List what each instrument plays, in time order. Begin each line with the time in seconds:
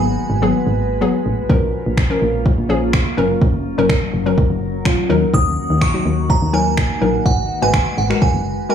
Already playing: fm bass G#1, synth pluck F#3 B3 G#4, ambient pad G#3 F#4 B4, synth bell G#5
0.30 fm bass G#1
0.42 synth pluck F#3 B3 G#4
0.67 fm bass G#1
1.01 synth pluck F#3 B3 G#4
1.26 fm bass A1
1.49 fm bass A#1, synth pluck F3 C#4 A#4, ambient pad A#3 C#4 F4, kick
1.86 fm bass A#1
1.97 finger snap, kick
2.10 synth pluck F3 C#4 A#4
2.22 fm bass A#1
2.46 kick
2.58 fm bass A#1
2.69 synth pluck F3 C#4 G#4
2.93 finger snap, kick
3.17 fm bass F#1, synth pluck F#3 C#4 A#4, ambient pad F#3 A#4
3.42 fm bass F#1, kick
3.78 fm bass F#1, synth pluck F#3 C#4 A#4
3.89 finger snap, kick
4.14 fm bass F#1
4.26 synth pluck F#3 C#4 A#4
4.38 kick
4.50 fm bass F#1
4.85 synth pluck F#3 C#4 F4, finger snap, kick
5.09 fm bass D#2, ambient pad D#3 A#3 F#4, synth pluck F#3 D#4 A#4
5.34 fm bass D#2, synth bell D#6, kick
5.70 fm bass D#2
5.81 synth bell C#6, finger snap, kick
5.94 synth pluck F#3 D#4 F#4
6.06 fm bass D#2
6.30 synth bell A#5, kick
6.42 fm bass D#2
6.53 synth pluck F#3 D#4 A#4, synth bell G#5
6.77 finger snap, kick
7.01 fm bass A#1, synth pluck F#3 D#4 A#4
7.25 fm bass G#1, ambient pad G#3, synth bell F#5, kick
7.62 fm bass G#1, synth pluck G#3 F#4 B4, synth bell G#5
7.73 finger snap, kick
7.98 fm bass G#1, synth bell F#5
8.10 synth pluck G#3 F#4 A#4, finger snap
8.22 fm bass F#1, synth bell G#5, kick
8.35 fm bass F#1
8.69 synth pluck G#3 F#4 A#4, synth bell G#5